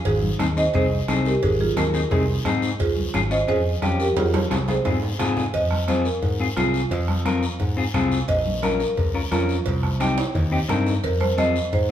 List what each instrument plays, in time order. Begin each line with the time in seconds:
0.05 fingered electric bass G#1, marimba D#4 G#4, bombo low, cowbell, long guiro
0.23 high conga
0.39 fingered electric bass D#2, clean electric guitar C4 D#4 G#4, bombo rim, cowbell, high conga, short guiro
0.57 clean electric guitar C4 D#4 G#4, marimba C5 D#5, short guiro
0.74 fingered electric bass C2, clean electric guitar C4 D#4 G#4, marimba G#4 C5, bombo low, cowbell, long guiro
1.08 fingered electric bass C2, clean electric guitar C4 D#4 G#4, bombo rim, cowbell, high conga, low timbale, short guiro
1.25 marimba G4 A#4, short guiro
1.43 fingered electric bass G#1, marimba D#4 G#4, bombo low, cowbell, long guiro
1.59 marimba F4 G#4, high conga
1.76 fingered electric bass D#2, clean electric guitar C4 D#4 G#4, marimba D#4 A#4, bombo rim, cowbell, high conga, short guiro
1.94 clean electric guitar C4 D#4 G#4, short guiro
2.11 fingered electric bass C2, clean electric guitar C4 D#4 G#4, marimba D#4 G#4, bombo low, cowbell, long guiro
2.45 fingered electric bass G#2, clean electric guitar C4 D#4 G#4, bombo rim, cowbell, high conga, low conga, short guiro
2.62 short guiro
2.79 fingered electric bass C#2, marimba F4 G#4, bombo low, cowbell, long guiro
2.97 high conga
3.14 fingered electric bass G#1, clean electric guitar C#4 F4 G#4, bombo rim, cowbell, high conga, short guiro
3.31 clean electric guitar C#4 F4 G#4, marimba C5 D#5, short guiro
3.48 fingered electric bass F2, clean electric guitar C#4 F4 G#4, marimba G#4 C5, bombo low, cowbell, long guiro
3.82 fingered electric bass F2, clean electric guitar C#4 F4 G4, bombo rim, cowbell, high conga, low timbale, short guiro
4.00 marimba G4 A#4, short guiro
4.16 fingered electric bass F2, marimba F4 G#4, bombo low, cowbell, high conga, high timbale, long guiro
4.34 bombo rim, high conga, high timbale
4.50 fingered electric bass C2, clean electric guitar C4 F4 G#4, bombo rim, cowbell, high conga, high timbale, short guiro
4.68 clean electric guitar C4 F4 G#4, marimba G#4 C5, high conga, low timbale, short guiro
4.85 fingered electric bass G#2, clean electric guitar C4 F4 G#4, bombo low, cowbell, low timbale, long guiro
5.03 low timbale
5.19 fingered electric bass G#2, clean electric guitar C4 F4 G#4, bombo rim, cowbell, low conga, low timbale, short guiro
5.37 low conga, low timbale, short guiro
5.54 fingered electric bass F2, marimba D#5, bombo low, cowbell, long guiro
5.71 bombo rim, high conga
5.88 clean electric guitar C4 F4 G#4, marimba C5, bombo rim, cowbell, high conga, short guiro
6.05 marimba A#4, short guiro
6.23 fingered electric bass G#2, bombo low, cowbell, long guiro
6.40 clean electric guitar C4 F4 G#4
6.57 fingered electric bass C2, clean electric guitar C4 F4 G#4, marimba F4, bombo rim, cowbell, high conga, low timbale, short guiro
6.74 short guiro
6.91 fingered electric bass F2, bombo low, cowbell, long guiro
7.08 bombo rim, high conga
7.25 clean electric guitar C4 F4 A#4, bombo rim, cowbell, high conga, short guiro
7.43 short guiro
7.60 fingered electric bass G#2, bombo low, cowbell, long guiro
7.77 clean electric guitar C4 F4 G#4
7.94 fingered electric bass C2, clean electric guitar C4 F4 G#4, bombo low, bombo rim, cowbell, high conga, low conga, short guiro
8.12 short guiro
8.28 fingered electric bass A#1, marimba D#5, bombo low, cowbell, long guiro
8.46 high conga
8.62 clean electric guitar C#4 F4 A#4, marimba A#4, bombo rim, cowbell, high conga, short guiro
8.80 marimba A#4, short guiro
8.97 fingered electric bass C#2, bombo low, cowbell, long guiro
9.14 clean electric guitar C#4 F4 A#4
9.31 fingered electric bass F2, clean electric guitar C#4 F4 A#4, marimba F4, bombo rim, cowbell, high conga, low timbale, short guiro
9.49 short guiro
9.66 fingered electric bass C2, bombo low, cowbell, long guiro
9.83 bombo rim, low conga
10.00 clean electric guitar C4 D#4 G4, bombo rim, cowbell, high conga, short guiro
10.18 high timbale, short guiro
10.35 fingered electric bass D#2, bombo low, cowbell, long guiro
10.51 clean electric guitar C4 D#4 G4
10.68 fingered electric bass G2, clean electric guitar C4 D#4 A#4, bombo rim, cowbell, high conga, low conga, low timbale, short guiro
10.86 low timbale, short guiro
11.04 fingered electric bass F2, marimba A#4, bombo low, cowbell, long guiro
11.21 marimba C5, bombo rim, high conga
11.37 clean electric guitar C4 F4 G#4, marimba D#5, bombo rim, cowbell, high conga, short guiro
11.56 short guiro
11.73 fingered electric bass G#2, marimba C5, bombo low, cowbell, long guiro